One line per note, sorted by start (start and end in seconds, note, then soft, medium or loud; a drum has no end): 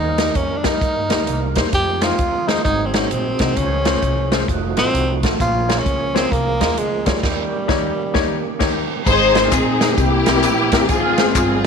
0.00 0.29 D#2 loud
0.00 0.60 D#3 medium
0.00 1.69 G3 medium
0.00 1.69 A#3 medium
0.00 0.37 D#4 medium
0.00 1.69 D#4 medium
0.00 1.72 A#4 medium
0.17 0.27 G3 medium
0.17 0.28 A#3 medium
0.17 0.27 D#4 medium
0.17 0.28 A#4 medium
0.17 snare loud
0.17 closed hi-hat medium
0.35 0.74 F2 medium
0.35 0.58 C#4 medium
0.35 kick medium
0.35 closed hi-hat medium
0.56 0.67 D4 medium
0.63 0.73 G3 medium
0.63 0.73 A#3 medium
0.63 0.74 D#4 medium
0.63 1.57 D#4 medium
0.63 0.74 A#4 medium
0.63 kick medium
0.63 snare loud
0.63 closed hi-hat medium
0.81 1.06 G2 medium
0.81 kick loud
0.81 closed hi-hat medium
1.09 1.25 D#2 medium
1.09 1.19 G3 medium
1.09 1.19 A#3 medium
1.09 1.19 D#4 medium
1.09 1.19 A#4 medium
1.09 snare loud
1.09 closed hi-hat medium
1.27 1.58 C2 medium
1.27 closed hi-hat medium
1.56 1.70 E2 medium
1.56 1.65 G3 medium
1.56 1.66 A#3 medium
1.56 1.66 D#4 medium
1.56 1.66 C5 medium
1.56 kick medium
1.56 snare loud
1.56 closed hi-hat medium
1.72 2.12 F2 loud
1.72 2.63 F3 medium
1.72 2.63 C4 medium
1.72 2.63 D#4 medium
1.72 1.80 G4 soft
1.72 2.04 G4 loud
1.72 kick medium
1.72 closed hi-hat medium
1.78 2.64 G#4 medium
2.01 2.11 G#3 medium
2.01 2.11 D#4 medium
2.01 2.11 F4 medium
2.01 2.49 F4 loud
2.01 2.11 C5 medium
2.01 snare loud
2.01 closed hi-hat medium
2.19 2.58 D#2 medium
2.19 kick medium
2.19 closed hi-hat medium
2.47 2.57 G#3 medium
2.47 2.57 D#4 medium
2.47 2.64 D#4 medium
2.47 2.57 F4 medium
2.47 2.57 C5 medium
2.47 snare loud
2.47 closed hi-hat medium
2.64 3.04 G#1 medium
2.64 3.36 G#2 medium
2.64 3.55 F#3 medium
2.64 3.55 C4 medium
2.64 2.87 D#4 medium
2.64 3.55 D#4 soft
2.64 3.55 G#4 medium
2.64 kick medium
2.64 closed hi-hat medium
2.86 2.95 C4 medium
2.94 3.03 G#3 medium
2.94 3.12 C#4 medium
2.94 3.03 D#4 medium
2.94 3.04 F#4 medium
2.94 3.04 C5 medium
2.94 snare loud
2.94 closed hi-hat medium
3.11 3.36 A#1 medium
3.11 3.58 C4 medium
3.11 closed hi-hat medium
3.39 3.54 C2 medium
3.39 3.49 G#3 medium
3.39 3.49 D#4 medium
3.39 3.50 F#4 medium
3.39 3.50 D#5 medium
3.39 kick medium
3.39 snare loud
3.39 closed hi-hat medium
3.56 3.95 C#2 loud
3.56 4.28 C#3 medium
3.56 4.47 F3 medium
3.56 4.46 C#4 medium
3.56 4.48 C#4 medium
3.56 4.47 G#4 medium
3.56 4.46 C5 soft
3.56 kick medium
3.56 closed hi-hat medium
3.85 3.95 G#3 medium
3.85 3.95 C#4 medium
3.85 3.95 F4 medium
3.85 3.95 C5 medium
3.85 snare loud
3.85 closed hi-hat medium
4.02 4.41 C2 medium
4.02 kick medium
4.02 closed hi-hat medium
4.32 4.41 G#3 medium
4.32 4.41 C#4 medium
4.32 4.41 F4 medium
4.32 4.41 C5 medium
4.32 snare loud
4.32 closed hi-hat medium
4.48 4.73 F1 medium
4.48 5.39 F3 medium
4.48 5.39 A3 medium
4.48 5.39 D#4 medium
4.48 5.39 F#4 medium
4.48 kick loud
4.48 closed hi-hat medium
4.77 4.92 A1 medium
4.77 4.86 A3 medium
4.77 5.21 C4 loud
4.77 4.86 F4 medium
4.77 4.86 F#4 medium
4.77 4.87 D#5 medium
4.77 snare medium
4.77 closed hi-hat medium
4.94 5.23 C2 medium
4.94 closed hi-hat medium
5.23 5.37 A1 medium
5.23 5.32 A3 medium
5.23 5.33 F4 medium
5.23 5.33 F#4 medium
5.23 5.33 A4 medium
5.23 kick medium
5.23 snare loud
5.23 closed hi-hat medium
5.40 5.79 A#1 loud
5.40 6.11 A#2 medium
5.40 7.20 F3 medium
5.40 7.20 A#3 medium
5.40 7.20 C#4 soft
5.40 5.80 F4 loud
5.40 7.20 G#4 medium
5.40 kick loud
5.40 closed hi-hat medium
5.68 5.78 A#3 medium
5.68 5.78 F4 medium
5.68 5.78 G#4 medium
5.68 5.78 C#5 medium
5.68 snare loud
5.68 closed hi-hat medium
5.78 6.17 C#4 medium
5.86 6.25 C#2 medium
5.86 kick medium
5.86 closed hi-hat medium
6.14 6.24 A#3 medium
6.14 6.33 C4 medium
6.14 6.24 F4 medium
6.14 6.24 G#4 medium
6.14 6.24 C#5 medium
6.14 snare loud
6.14 closed hi-hat medium
6.32 6.57 C2 medium
6.32 6.79 A#3 loud
6.32 kick loud
6.32 closed hi-hat medium
6.60 6.75 D#2 medium
6.60 6.70 A#3 medium
6.60 6.70 F4 medium
6.60 6.70 G#4 medium
6.60 6.70 D#5 medium
6.60 snare loud
6.60 closed hi-hat medium
6.78 7.03 C#2 medium
6.78 7.08 G#3 medium
6.78 closed hi-hat medium
7.06 7.21 D2 medium
7.06 8.61 G3 medium
7.06 7.16 A#3 medium
7.06 7.16 F4 medium
7.06 7.16 G#4 medium
7.06 7.16 C#5 medium
7.06 kick medium
7.06 snare loud
7.06 closed hi-hat medium
7.23 7.43 D#2 loud
7.23 9.03 D#3 medium
7.23 9.03 A#3 medium
7.23 9.03 C#4 soft
7.23 9.03 G4 medium
7.23 kick loud
7.23 snare loud
7.23 crash medium
7.68 7.89 D#2 medium
7.68 7.89 A#3 medium
7.68 7.89 D#4 medium
7.68 7.89 G4 medium
7.68 7.89 C#5 medium
7.68 kick loud
7.68 snare medium
8.14 8.35 D#2 medium
8.14 8.34 A#3 medium
8.14 8.34 D#4 medium
8.14 8.35 G4 medium
8.14 8.35 C#5 loud
8.14 kick medium
8.14 snare medium
8.59 8.81 D#2 medium
8.59 8.80 A#3 medium
8.59 8.80 D#4 medium
8.59 8.80 G4 medium
8.59 8.80 C#5 medium
8.59 kick loud
8.59 snare medium
8.59 crash medium
9.06 9.45 G#1 loud
9.06 9.77 G#2 medium
9.06 9.97 D#3 medium
9.06 9.97 G#3 medium
9.06 9.96 C4 medium
9.06 9.51 D#4 medium
9.06 9.96 G#4 medium
9.06 9.51 G#4 medium
9.06 9.50 C5 loud
9.06 kick loud
9.06 crash medium
9.06 tambourine medium
9.35 9.40 G#3 medium
9.35 9.40 C4 medium
9.35 9.40 D#4 medium
9.35 9.41 C5 medium
9.35 snare loud
9.35 closed hi-hat medium
9.35 tambourine soft
9.44 9.54 G#3 medium
9.44 9.54 C4 medium
9.44 9.54 D#4 medium
9.44 9.54 F4 medium
9.51 9.91 A#1 medium
9.51 9.95 C4 medium
9.51 9.95 D#4 medium
9.51 9.98 G#4 medium
9.51 kick loud
9.51 clap medium
9.51 closed hi-hat medium
9.51 tambourine loud
9.81 9.86 G#3 medium
9.81 9.87 C4 medium
9.81 9.87 D#4 medium
9.81 9.87 A#4 medium
9.81 snare loud
9.81 closed hi-hat medium
9.81 tambourine medium
9.89 9.98 G#3 medium
9.89 9.98 C4 medium
9.89 9.98 D#4 medium
9.89 9.98 G4 medium
9.97 10.23 C2 loud
9.97 10.69 C3 medium
9.97 10.88 E3 medium
9.97 10.88 A#3 medium
9.97 10.86 A#3 medium
9.97 10.88 C4 medium
9.97 10.86 E4 medium
9.97 10.87 G4 medium
9.97 10.90 G4 loud
9.97 kick loud
9.97 closed hi-hat medium
9.97 tambourine medium
10.26 10.41 C2 medium
10.26 10.32 G3 medium
10.26 10.32 C4 medium
10.26 10.32 E4 medium
10.26 10.32 A#4 medium
10.26 snare loud
10.26 closed hi-hat medium
10.26 tambourine medium
10.35 10.45 G3 medium
10.35 10.46 C4 medium
10.35 10.46 E4 medium
10.35 10.46 A#4 medium
10.43 10.89 A#1 medium
10.43 clap medium
10.43 closed hi-hat medium
10.43 tambourine medium
10.72 10.82 G3 medium
10.72 10.82 C4 medium
10.72 10.82 E4 medium
10.72 10.83 A#4 medium
10.72 kick medium
10.72 snare loud
10.72 closed hi-hat medium
10.72 tambourine medium
10.88 11.28 G#1 loud
10.88 11.61 G#2 medium
10.88 11.67 F3 medium
10.88 11.67 G#3 medium
10.88 11.67 C4 medium
10.88 11.33 C4 medium
10.88 11.33 F4 medium
10.88 11.67 G#4 medium
10.88 11.33 G#4 loud
10.88 kick loud
10.88 closed hi-hat medium
10.88 tambourine medium
11.18 11.23 G#3 medium
11.18 11.23 C4 medium
11.18 11.23 F4 medium
11.18 11.24 C5 medium
11.18 snare loud
11.18 closed hi-hat medium
11.18 tambourine soft
11.26 11.37 G#3 medium
11.26 11.37 C4 medium
11.26 11.37 F4 medium
11.26 11.37 C5 medium
11.34 11.67 G1 loud
11.34 11.67 C4 medium
11.34 11.67 F4 medium
11.34 11.67 G#4 medium
11.34 kick medium
11.34 clap medium
11.34 closed hi-hat medium
11.34 tambourine loud